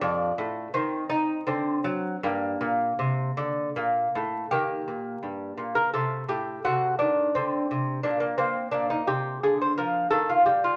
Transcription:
<<
  \new Staff \with { instrumentName = "Lute" } { \time 3/4 \key g \minor \tempo 4 = 84 r2. | r2. | g'4.~ g'16 bes'16 a'8 g'8 | fis'8 d'8 c'4 d'16 bes16 c'8 |
d'16 ees'16 g'8 aes'16 c''16 bes'8 a'16 f'16 g'16 f'16 | }
  \new Staff \with { instrumentName = "Lute" } { \clef bass \time 3/4 \key g \minor << { d'4 c'4 c'4 | bes2. | bes2 a4 | a2 bes4 |
bes2 bes4 | } \\ { f,8 a,8 ees8 ees'8 d8 fis8 | g,8 bes,8 c8 d8 bes,8 a,8 | ees8 bes,8 g,8 bes,8 c8 a,8 | c8 ees8 d8 c8 bes,8 bes8 |
bes,8 c8 d8 f8 ees8 g8 | } >> }
>>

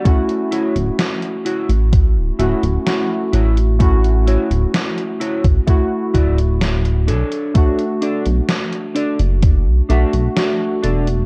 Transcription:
<<
  \new Staff \with { instrumentName = "Clean electric guitar" } { \time 4/4 \key d \major \tempo 4 = 64 r8 <e' fis' cis''>16 r8. <e' fis' cis''>16 r8. <e' fis' cis''>16 r8. <e' fis' cis''>16 r16 | r8 <e' fis' cis''>16 r8. <e' fis' cis''>16 r8. <e' fis' d''>16 r8. <d' a' cis''>8~ | <d' a' cis''>8 <d' a' d''>16 r8. <d' a' d''>16 r8. <d' a' e''>16 r8. <d' a' d''>16 r16 | }
  \new Staff \with { instrumentName = "Synth keys" } { \time 4/4 \key d \major <a cis' e' fis'>2~ <a cis' e' fis'>8 <a cis' e' fis'>8 <a cis' e' fis'>4 | <a cis' e' fis'>2 <a e' fis'>4. r8 | <a d' fis'>2~ <a d' fis'>8 <a d' fis'>8 <a d' fis'>4 | }
  \new Staff \with { instrumentName = "Analog synth bass" } { \clef bass \time 4/4 \key d \major r8. d,,16 r8. a,,8 d,,16 d,,16 d,,16 r8 a,,8~ | a,,8 r16 d,,16 r8. a,,16 r8 d,,4 b,,16 r16 | r8. b,,16 r8. fis,,8 b,,16 b,,16 b,,16 r8 e,,8 | }
  \new DrumStaff \with { instrumentName = "Drums" } \drummode { \time 4/4 <hh bd>16 hh16 hh16 hh16 <hh sn>16 hh16 hh16 hh16 <hh bd>8 hh16 hh16 <hh sn>8 hh16 hh16 | <hh bd>16 hh16 hh16 hh16 <hh sn>16 hh16 hh16 <hh bd>16 <hh bd>8 <hh bd>16 hh16 <hh sn>16 hh16 hh16 hh16 | <hh bd>16 hh16 hh16 hh16 <hh sn>16 hh16 hh16 hh16 <hh bd>8 hh16 hh16 <hh sn>8 hh16 hh16 | }
>>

